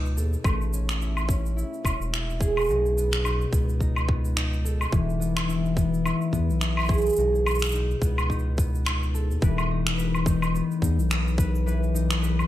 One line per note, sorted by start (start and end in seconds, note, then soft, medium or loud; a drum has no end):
0.00 0.18 C#2 loud
0.00 0.50 B2 medium
0.00 2.72 B3 medium
0.00 1.07 D#4 medium
0.00 0.23 G#4 medium
0.06 shaker soft
0.17 0.36 D#2 loud
0.17 3.90 A4 medium
0.17 shaker medium
0.33 shaker soft
0.44 1.64 A1 loud
0.44 6.11 A3 medium
0.44 kick loud
0.44 low woodblock medium
0.44 shaker soft
0.62 shaker soft
0.74 1.28 C#4 medium
0.74 shaker medium
0.89 finger snap medium
0.89 shaker soft
1.01 1.56 E4 medium
1.01 shaker soft
1.17 low woodblock medium
1.17 shaker soft
1.28 1.84 C#4 medium
1.28 kick medium
1.28 shaker medium
1.46 shaker soft
1.56 2.12 E4 medium
1.56 shaker soft
1.74 shaker soft
1.84 1.95 E1 medium
1.84 4.74 C#4 medium
1.84 kick medium
1.84 low woodblock medium
1.84 shaker medium
2.00 2.70 E1 medium
2.00 shaker soft
2.13 3.30 E4 medium
2.13 finger snap medium
2.13 shaker soft
2.30 shaker soft
2.41 4.70 G#4 medium
2.41 kick loud
2.41 shaker medium
2.57 low woodblock medium
2.57 shaker soft
2.60 shaker soft
2.64 shaker soft
2.66 3.46 B1 loud
2.66 shaker soft
2.69 4.98 B2 medium
2.69 shaker soft
2.70 shaker soft
2.86 shaker soft
2.97 3.52 B3 medium
2.97 shaker medium
3.13 finger snap medium
3.13 shaker soft
3.24 3.80 D#4 medium
3.24 low woodblock medium
3.24 shaker soft
3.41 shaker soft
3.53 4.86 C#2 medium
3.53 4.09 B3 medium
3.53 kick medium
3.53 shaker medium
3.69 shaker soft
3.81 4.36 D#4 medium
3.81 kick medium
3.81 shaker soft
3.96 low woodblock medium
3.96 shaker soft
4.09 5.19 B3 medium
4.09 kick loud
4.25 shaker soft
4.36 5.54 D#4 medium
4.36 finger snap medium
4.36 shaker soft
4.53 shaker soft
4.64 6.84 A4 medium
4.64 shaker medium
4.81 low woodblock medium
4.81 shaker soft
4.92 6.12 E1 loud
4.92 7.23 E3 medium
4.92 kick loud
4.92 shaker soft
5.10 shaker soft
5.20 5.77 B3 medium
5.20 shaker medium
5.37 finger snap medium
5.37 low woodblock medium
5.37 shaker soft
5.48 6.05 E4 medium
5.48 shaker soft
5.66 shaker soft
5.77 6.33 B3 medium
5.77 kick medium
5.77 shaker medium
5.94 shaker soft
6.06 6.61 E4 medium
6.06 low woodblock medium
6.06 shaker soft
6.21 shaker soft
6.33 6.51 E2 medium
6.33 7.45 B3 medium
6.33 kick medium
6.33 shaker medium
6.49 7.11 B1 loud
6.49 shaker soft
6.61 7.80 E4 medium
6.61 finger snap medium
6.61 shaker soft
6.77 low woodblock medium
6.77 shaker soft
6.79 low woodblock medium
6.79 shaker soft
6.83 low woodblock soft
6.83 shaker soft
6.85 low woodblock soft
6.85 shaker soft
6.87 kick loud
6.87 low woodblock soft
6.87 shaker soft
6.89 9.20 G#4 medium
6.89 shaker soft
6.94 shaker soft
6.98 shaker soft
7.02 shaker soft
7.06 shaker soft
7.09 shaker soft
7.13 shaker medium
7.16 7.95 B1 loud
7.16 9.47 B2 medium
7.16 shaker medium
7.19 shaker soft
7.35 shaker soft
7.45 8.02 B3 medium
7.45 low woodblock medium
7.45 shaker soft
7.51 shaker soft
7.55 shaker soft
7.59 finger snap medium
7.59 shaker soft
7.63 shaker soft
7.66 shaker medium
7.69 shaker medium
7.72 8.29 D#4 medium
7.72 shaker medium
7.75 shaker soft
7.91 shaker soft
8.02 9.32 C#2 medium
8.02 8.58 B3 medium
8.02 kick medium
8.02 shaker medium
8.18 low woodblock medium
8.18 shaker soft
8.30 8.86 D#4 medium
8.30 kick medium
8.30 shaker soft
8.39 shaker soft
8.58 10.54 B3 medium
8.58 kick loud
8.58 shaker medium
8.75 shaker soft
8.86 9.70 D#4 medium
8.86 finger snap medium
8.86 low woodblock medium
8.86 shaker soft
9.03 shaker soft
9.14 11.34 A4 medium
9.14 shaker medium
9.30 9.38 D#2 medium
9.30 shaker soft
9.42 10.61 E1 loud
9.42 11.66 E3 medium
9.42 9.98 B4 medium
9.42 kick loud
9.42 shaker soft
9.58 low woodblock medium
9.58 shaker soft
9.71 10.26 D#4 medium
9.87 finger snap medium
9.87 shaker soft
9.98 11.38 B4 medium
9.98 shaker soft
10.15 low woodblock medium
10.15 shaker soft
10.26 10.82 D#4 medium
10.26 kick loud
10.26 shaker medium
10.42 low woodblock medium
10.42 shaker soft
10.54 11.10 B3 medium
10.54 shaker soft
10.71 shaker soft
10.82 10.99 E2 loud
10.82 11.94 D#4 medium
10.82 kick medium
10.82 shaker medium
10.97 12.43 B1 loud
10.97 shaker soft
11.11 12.47 B3 medium
11.11 finger snap medium
11.11 shaker soft
11.28 shaker soft
11.38 11.66 B4 medium
11.38 kick loud
11.38 shaker medium
11.55 shaker soft
11.66 12.47 E3 medium
11.66 12.21 B4 medium
11.66 shaker soft
11.84 shaker soft
11.95 12.47 D#4 medium
11.95 shaker medium
12.11 finger snap medium
12.11 shaker soft
12.22 12.47 B4 medium
12.22 shaker medium
12.39 low woodblock medium
12.39 shaker soft